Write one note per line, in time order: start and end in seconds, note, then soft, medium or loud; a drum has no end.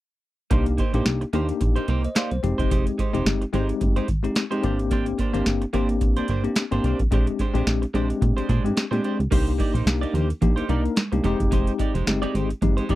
0.50 0.81 C2 loud
0.50 0.70 A#3 medium
0.50 0.81 A#3 medium
0.50 0.82 D4 medium
0.50 0.66 D#4 medium
0.50 0.82 D#4 medium
0.50 0.66 G4 medium
0.50 0.82 G4 medium
0.50 0.65 C5 medium
0.50 kick loud
0.50 closed hi-hat loud
0.66 muted clean electric guitar stroke soft
0.66 closed hi-hat soft
0.78 0.94 A#3 medium
0.78 0.93 D#4 medium
0.78 0.93 G4 medium
0.78 0.92 C5 medium
0.78 kick medium
0.78 closed hi-hat medium
0.93 1.02 A#1 medium
0.93 1.24 A#3 medium
0.93 1.04 A#3 soft
0.93 1.24 D4 medium
0.93 1.24 D#4 medium
0.93 1.05 D#4 soft
0.93 1.05 G4 medium
0.93 1.24 G4 loud
0.93 1.06 C5 medium
0.93 closed hi-hat soft
1.06 1.25 C2 medium
1.06 muted clean electric guitar stroke soft
1.06 snare loud
1.06 closed hi-hat medium
1.21 muted clean electric guitar stroke medium
1.21 closed hi-hat soft
1.33 1.53 D#2 medium
1.33 1.53 A#3 medium
1.33 1.84 A#3 medium
1.33 1.84 D4 medium
1.33 1.85 D#4 medium
1.33 1.49 D#4 medium
1.33 1.85 G4 loud
1.33 1.48 G4 medium
1.33 1.47 C5 medium
1.33 closed hi-hat medium
1.49 muted clean electric guitar stroke soft
1.49 closed hi-hat medium
1.61 1.80 A#1 loud
1.61 muted clean electric guitar stroke soft
1.61 kick loud
1.61 closed hi-hat medium
1.76 1.87 A#3 soft
1.76 1.87 D#4 medium
1.76 1.88 G4 medium
1.76 1.89 C5 medium
1.76 closed hi-hat soft
1.88 2.08 C2 medium
1.88 2.08 A#3 medium
1.88 2.04 D#4 medium
1.88 2.03 G4 loud
1.88 2.02 C5 medium
1.88 closed hi-hat medium
2.03 2.16 C5 soft
2.03 2.16 D#5 medium
2.03 muted clean electric guitar stroke soft
2.03 closed hi-hat soft
2.15 2.35 A#3 medium
2.15 2.31 D#4 loud
2.15 2.31 G4 medium
2.15 2.30 C5 medium
2.15 2.31 D5 medium
2.15 2.31 F5 medium
2.15 snare loud
2.15 closed hi-hat medium
2.31 2.40 C2 medium
2.31 2.58 C5 medium
2.31 muted clean electric guitar stroke soft
2.31 closed hi-hat medium
2.43 2.54 F1 loud
2.43 2.98 G#3 medium
2.43 2.98 C4 medium
2.43 2.98 D#4 medium
2.43 2.99 G4 loud
2.43 muted clean electric guitar stroke soft
2.43 closed hi-hat medium
2.58 2.67 F#1 loud
2.58 2.69 G#3 medium
2.58 2.70 D#4 medium
2.58 2.71 G4 medium
2.58 2.71 C5 medium
2.58 kick medium
2.58 closed hi-hat soft
2.70 2.90 F1 medium
2.70 2.90 G#3 medium
2.70 2.86 D#4 medium
2.70 2.86 G4 medium
2.70 2.85 C5 medium
2.70 kick loud
2.70 closed hi-hat loud
2.86 muted clean electric guitar stroke soft
2.86 closed hi-hat soft
2.98 3.14 G#3 medium
2.98 3.14 D#4 medium
2.98 3.13 G4 medium
2.98 3.12 C5 medium
2.98 kick medium
2.98 closed hi-hat medium
3.13 3.22 F1 medium
3.13 3.44 G#3 medium
3.13 3.25 G#3 soft
3.13 3.44 C4 medium
3.13 3.44 D#4 medium
3.13 3.25 D#4 soft
3.13 3.26 G4 medium
3.13 3.44 G4 loud
3.13 3.26 C5 medium
3.13 closed hi-hat soft
3.26 3.45 G1 loud
3.26 muted clean electric guitar stroke soft
3.26 snare loud
3.26 closed hi-hat medium
3.42 muted clean electric guitar stroke medium
3.42 closed hi-hat medium
3.53 3.73 G#1 medium
3.53 4.04 G#3 medium
3.53 3.73 G#3 medium
3.53 4.04 C4 medium
3.53 4.04 D#4 medium
3.53 3.69 D#4 medium
3.53 4.05 G4 medium
3.53 3.68 G4 medium
3.53 3.68 C5 medium
3.53 closed hi-hat medium
3.69 muted clean electric guitar stroke soft
3.69 closed hi-hat medium
3.81 4.01 G1 loud
3.81 muted clean electric guitar stroke soft
3.81 kick loud
3.81 closed hi-hat medium
3.96 4.07 G#3 medium
3.96 4.08 D#4 medium
3.96 4.08 G4 medium
3.96 4.09 C5 medium
3.96 closed hi-hat soft
4.08 4.28 G#1 medium
4.08 muted clean electric guitar stroke soft
4.08 kick medium
4.08 closed hi-hat medium
4.23 4.43 G#3 medium
4.23 4.43 C4 medium
4.23 4.43 D#4 medium
4.23 4.43 G4 medium
4.23 muted clean electric guitar stroke soft
4.23 closed hi-hat soft
4.36 muted clean electric guitar stroke soft
4.36 snare loud
4.36 closed hi-hat medium
4.51 4.63 G#3 medium
4.51 4.62 C4 medium
4.51 4.64 D#4 medium
4.51 4.63 G4 medium
4.51 4.64 C5 medium
4.51 closed hi-hat medium
4.63 5.13 G#1 loud
4.63 5.18 A#3 medium
4.63 4.80 A#3 medium
4.63 5.19 C4 medium
4.63 5.19 D4 medium
4.63 4.79 D4 medium
4.63 5.19 G4 medium
4.63 4.79 G4 medium
4.63 4.78 C5 medium
4.63 closed hi-hat medium
4.79 muted clean electric guitar stroke soft
4.79 closed hi-hat medium
4.91 5.11 A#3 medium
4.91 5.07 D4 medium
4.91 5.06 G4 medium
4.91 5.05 C5 medium
4.91 kick loud
4.91 closed hi-hat loud
5.06 muted clean electric guitar stroke medium
5.06 closed hi-hat soft
5.18 5.34 A#3 medium
5.18 5.34 D4 medium
5.18 5.33 G4 medium
5.18 5.32 C5 medium
5.18 kick medium
5.18 closed hi-hat medium
5.33 5.43 G#1 medium
5.33 5.64 A#3 medium
5.33 5.45 A#3 soft
5.33 5.64 C4 medium
5.33 5.64 D4 medium
5.33 5.46 D4 medium
5.33 5.64 G4 medium
5.33 5.46 G4 medium
5.33 5.46 C5 medium
5.33 closed hi-hat soft
5.46 5.66 G1 medium
5.46 muted clean electric guitar stroke soft
5.46 snare medium
5.46 closed hi-hat medium
5.62 muted clean electric guitar stroke soft
5.62 closed hi-hat medium
5.73 6.03 G#1 medium
5.73 6.25 A#3 medium
5.73 5.93 A#3 medium
5.73 6.25 C4 medium
5.73 6.25 D4 medium
5.73 5.89 D4 medium
5.73 6.25 G4 medium
5.73 5.89 G4 medium
5.73 5.88 C5 medium
5.73 closed hi-hat medium
5.89 muted clean electric guitar stroke soft
5.89 closed hi-hat medium
6.01 6.21 A#1 loud
6.01 muted clean electric guitar stroke soft
6.01 kick loud
6.01 closed hi-hat medium
6.17 6.28 A#3 soft
6.17 6.29 D4 medium
6.17 6.29 G4 medium
6.17 6.30 C5 medium
6.17 closed hi-hat soft
6.28 6.48 G1 medium
6.28 6.49 A#3 medium
6.28 6.45 D4 medium
6.28 6.45 G4 medium
6.28 6.44 C5 medium
6.28 closed hi-hat medium
6.44 6.63 A#3 medium
6.44 6.63 C4 medium
6.44 6.63 D4 medium
6.44 6.64 G4 medium
6.44 muted clean electric guitar stroke soft
6.44 closed hi-hat soft
6.56 muted clean electric guitar stroke soft
6.56 snare loud
6.56 closed hi-hat medium
6.71 6.80 G#1 medium
6.71 7.02 A#3 medium
6.71 6.83 A#3 medium
6.71 7.01 C4 medium
6.71 7.02 D4 medium
6.71 6.84 D4 medium
6.71 7.02 G4 medium
6.71 6.85 G4 medium
6.71 6.85 C5 medium
6.71 closed hi-hat medium
6.84 6.95 C2 medium
6.84 7.00 A#3 medium
6.84 7.00 D4 medium
6.84 6.99 G4 medium
6.84 6.99 C5 medium
6.84 closed hi-hat medium
6.99 7.08 B1 medium
6.99 muted clean electric guitar stroke soft
6.99 kick medium
6.99 closed hi-hat medium
7.11 7.31 A#1 medium
7.11 7.42 G#3 medium
7.11 7.31 G#3 medium
7.11 7.42 C4 medium
7.11 7.42 D4 medium
7.11 7.28 D4 medium
7.11 7.42 G4 medium
7.11 7.27 G4 medium
7.11 7.26 C5 medium
7.11 kick loud
7.11 closed hi-hat loud
7.27 muted clean electric guitar stroke soft
7.27 closed hi-hat soft
7.39 7.55 G#3 soft
7.39 7.55 D4 soft
7.39 7.54 G4 medium
7.39 7.53 C5 medium
7.39 kick medium
7.39 closed hi-hat medium
7.54 7.63 A#1 loud
7.54 7.84 G#3 medium
7.54 7.65 G#3 soft
7.54 7.84 C4 medium
7.54 7.84 D4 medium
7.54 7.66 D4 medium
7.54 7.84 G4 loud
7.54 7.66 G4 medium
7.54 7.67 C5 medium
7.54 closed hi-hat medium
7.66 7.86 A#1 medium
7.66 muted clean electric guitar stroke soft
7.66 snare loud
7.66 closed hi-hat medium
7.82 muted clean electric guitar stroke soft
7.82 closed hi-hat medium
7.94 8.13 A#1 medium
7.94 8.45 G#3 medium
7.94 8.14 G#3 medium
7.94 8.45 C4 medium
7.94 8.45 D4 medium
7.94 8.10 D4 medium
7.94 8.45 G4 medium
7.94 8.09 G4 medium
7.94 8.08 C5 medium
7.94 closed hi-hat medium
8.10 muted clean electric guitar stroke soft
8.10 closed hi-hat medium
8.21 8.33 A#2 medium
8.21 muted clean electric guitar stroke soft
8.21 kick loud
8.21 closed hi-hat medium
8.37 8.48 G#3 soft
8.37 8.48 D4 soft
8.37 8.49 G4 medium
8.37 8.49 C5 medium
8.37 closed hi-hat soft
8.49 8.60 A#2 loud
8.49 8.69 G#3 medium
8.49 8.64 D4 medium
8.49 8.64 G4 medium
8.49 8.63 C5 medium
8.49 kick medium
8.49 closed hi-hat medium
8.64 8.73 G#2 medium
8.64 8.84 G#3 medium
8.64 8.84 C4 medium
8.64 8.84 D4 medium
8.64 8.84 G4 medium
8.64 muted clean electric guitar stroke soft
8.64 closed hi-hat soft
8.76 muted clean electric guitar stroke soft
8.76 snare loud
8.76 closed hi-hat medium
8.91 9.00 A#2 medium
8.91 9.22 G#3 medium
8.91 9.02 G#3 medium
8.91 9.22 C4 medium
8.91 9.22 D4 medium
8.91 9.03 D4 medium
8.91 9.03 G4 medium
8.91 9.22 G4 medium
8.91 9.04 C5 medium
8.91 closed hi-hat medium
9.03 9.20 G#3 medium
9.03 9.19 D4 medium
9.03 9.18 G4 medium
9.03 9.18 C5 medium
9.03 closed hi-hat medium
9.19 9.28 C#2 medium
9.19 muted clean electric guitar stroke soft
9.19 closed hi-hat soft
9.31 9.62 C2 loud
9.31 9.51 A#3 medium
9.31 9.73 A#3 medium
9.31 9.74 D4 medium
9.31 9.51 D#4 medium
9.31 9.74 D#4 medium
9.31 9.52 G4 medium
9.31 9.74 G4 medium
9.31 9.52 C5 medium
9.31 kick loud
9.31 closed hi-hat loud
9.31 crash medium
9.31 muted conga soft
9.47 closed hi-hat soft
9.58 9.74 A#3 medium
9.58 9.74 D#4 medium
9.58 9.73 G4 medium
9.58 9.73 D5 medium
9.58 kick medium
9.58 closed hi-hat medium
9.58 muted conga soft
9.74 9.83 A#1 medium
9.74 9.85 A#3 soft
9.74 9.85 D#4 medium
9.74 9.86 G4 medium
9.74 9.86 C5 medium
9.74 closed hi-hat medium
9.86 10.06 C2 medium
9.86 10.28 A#3 medium
9.86 10.29 D4 medium
9.86 10.29 D#4 medium
9.86 10.29 G4 medium
9.86 snare loud
9.86 closed hi-hat medium
9.86 high conga medium
10.01 10.12 A#3 medium
10.01 10.13 D#4 medium
10.01 10.13 G4 medium
10.01 10.15 D5 medium
10.01 closed hi-hat soft
10.13 10.33 D#2 loud
10.13 10.30 A#3 medium
10.13 10.29 D#4 medium
10.13 10.29 G4 medium
10.13 10.28 C5 medium
10.13 closed hi-hat medium
10.13 low conga medium
10.29 muted clean electric guitar stroke soft
10.29 closed hi-hat medium
10.41 10.61 A#1 loud
10.41 10.63 A#3 medium
10.41 10.63 D4 medium
10.41 10.63 D#4 medium
10.41 10.63 G4 medium
10.41 muted clean electric guitar stroke soft
10.41 kick loud
10.41 closed hi-hat medium
10.41 low conga medium
10.56 10.67 A#3 soft
10.56 10.68 D#4 medium
10.56 10.69 G4 medium
10.56 10.70 C5 medium
10.56 closed hi-hat soft
10.68 10.88 C2 medium
10.68 10.88 A#3 medium
10.68 11.00 A#3 medium
10.68 11.00 D4 medium
10.68 10.84 D#4 medium
10.68 11.00 D#4 medium
10.68 10.83 G4 medium
10.68 11.00 A#4 medium
10.68 10.83 D5 medium
10.68 closed hi-hat medium
10.84 muted clean electric guitar stroke soft
10.84 closed hi-hat soft
10.96 muted clean electric guitar stroke soft
10.96 snare loud
10.96 closed hi-hat medium
10.96 high conga medium
11.12 11.21 C2 medium
11.12 11.24 A#3 medium
11.12 11.24 D4 medium
11.12 11.24 D#4 medium
11.12 11.24 G4 medium
11.12 muted clean electric guitar stroke medium
11.12 closed hi-hat medium
11.12 high conga medium
11.24 11.35 F1 loud
11.24 11.44 G#3 medium
11.24 11.92 G#3 medium
11.24 11.92 C4 medium
11.24 11.40 D#4 medium
11.24 11.92 D#4 medium
11.24 11.39 G4 medium
11.24 11.92 G4 loud
11.24 11.38 C5 medium
11.24 closed hi-hat medium
11.39 11.48 F#1 medium
11.39 muted clean electric guitar stroke medium
11.39 kick medium
11.39 closed hi-hat medium
11.51 11.71 F1 loud
11.51 11.71 G#3 medium
11.51 11.71 D#4 medium
11.51 11.72 G4 medium
11.51 11.72 C5 medium
11.51 kick loud
11.51 closed hi-hat loud
11.51 muted conga soft
11.67 closed hi-hat soft
11.79 11.95 G#3 medium
11.79 11.94 D#4 medium
11.79 11.94 G4 medium
11.79 11.94 D5 medium
11.79 kick medium
11.79 closed hi-hat medium
11.79 muted conga soft
11.94 12.03 F1 loud
11.94 12.05 G#3 medium
11.94 12.06 D#4 soft
11.94 12.06 G4 medium
11.94 12.07 C5 medium
11.94 closed hi-hat medium
12.07 12.26 G1 medium
12.07 12.49 G#3 medium
12.07 12.49 C4 medium
12.07 12.49 D#4 medium
12.07 12.49 G4 medium
12.07 snare loud
12.07 closed hi-hat medium
12.07 high conga medium
12.22 12.32 G#3 medium
12.22 12.33 D#4 medium
12.22 12.34 G4 medium
12.22 12.35 D5 loud
12.22 closed hi-hat soft
12.34 12.54 G#1 medium
12.34 12.50 G#3 medium
12.34 12.50 D#4 medium
12.34 12.49 G4 medium
12.34 12.48 C5 medium
12.34 closed hi-hat medium
12.49 muted clean electric guitar stroke soft
12.49 closed hi-hat medium
12.62 12.81 G1 loud
12.62 12.83 G#3 medium
12.62 12.83 C4 medium
12.62 12.83 D#4 medium
12.62 12.83 G4 medium
12.62 muted clean electric guitar stroke soft
12.62 kick loud
12.62 closed hi-hat medium
12.62 muted conga soft
12.62 low conga medium
12.77 12.88 G#3 soft
12.77 12.88 D#4 soft
12.77 12.89 G4 medium
12.77 12.90 C5 medium
12.77 closed hi-hat soft
12.89 12.95 G#1 medium
12.89 12.95 G#3 medium
12.89 12.95 C4 medium
12.89 12.95 D#4 medium
12.89 12.95 D#4 loud
12.89 12.95 G4 loud
12.89 12.95 D5 medium
12.89 kick medium
12.89 closed hi-hat medium